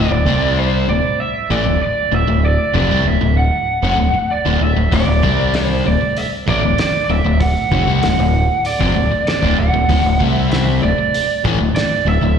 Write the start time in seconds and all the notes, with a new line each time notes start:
Already playing: D1 A2 D5
0.11 D1 D2 A2
0.26 C2 C3 G3 C4
0.59 C5
0.87 D1 D2 A2 D5
1.04 muted distorted electric guitar stroke, muted fingered electric bass stroke, muted overdriven electric guitar stroke
1.20 E5
1.50 A1 A2 E3 D5
1.65 D1 D2 A2
1.81 D5, muted overdriven electric guitar stroke, muted distorted electric guitar stroke, muted fingered electric bass stroke
2.12 D1 D2 A2 E5
2.27 D1 D2 A2
2.45 D5
2.74 F1 F2 C3 D5
2.90 C2 C3 G3
3.06 D1 D2 A2 E5
3.21 D1 D2 A2
3.38 F#5
3.83 F1 F2 C3
3.99 D1 D2 A2
4.15 muted overdriven electric guitar stroke, muted fingered electric bass stroke, muted distorted electric guitar stroke
4.31 D5
4.46 D1 D2 A2
4.61 D1 D2 A2 E5
4.76 D1 D2 A2
4.91 D1 D2 A2 D5, kick, open hi-hat
5.07 D1 D2 A2
5.23 C2 C3 G3 C4, kick
5.54 C5, snare, open hi-hat
5.85 D1 D2 A2 D5
6.01 muted fingered electric bass stroke, muted distorted electric guitar stroke, muted overdriven electric guitar stroke
6.17 E5, open hi-hat
6.48 A1 A2 E3 D5, kick
6.62 D1 D2 A2
6.78 D5, muted fingered electric bass stroke, muted distorted electric guitar stroke, muted overdriven electric guitar stroke, snare, open hi-hat
7.04 D5
7.09 D1 D2 A2 E5
7.25 D1 D2 A2
7.40 F#5, kick, open hi-hat
7.71 F1 F2 C3, kick
7.87 C2 C3 G3
8.03 D1 D2 A2 F#5, snare, open hi-hat
8.19 D1 D2 A2
8.65 D5, open hi-hat
8.80 F1 F2 C3, kick
8.96 D1 D2 A2
9.12 muted overdriven electric guitar stroke, muted distorted electric guitar stroke, muted fingered electric bass stroke
9.27 D5, snare, open hi-hat
9.43 D1 D2 A2, kick
9.58 D1 D2 A2 F#5
9.74 D1 D2 A2
9.89 D1 D2 A2, kick, open hi-hat
10.04 D1 D2 A2
10.20 C2 C3 G3 C4, kick
10.27 E5
10.52 E5, snare, open hi-hat
10.82 D1 D2 A2 D5
10.98 muted fingered electric bass stroke, muted distorted electric guitar stroke, muted overdriven electric guitar stroke
11.14 open hi-hat
11.45 A1 A2 E3, kick
11.58 D1 D2 A2
11.74 D5, muted distorted electric guitar stroke, muted fingered electric bass stroke, muted overdriven electric guitar stroke, snare, open hi-hat
12.05 D1 D2 A2 E5
12.22 D1 D2 A2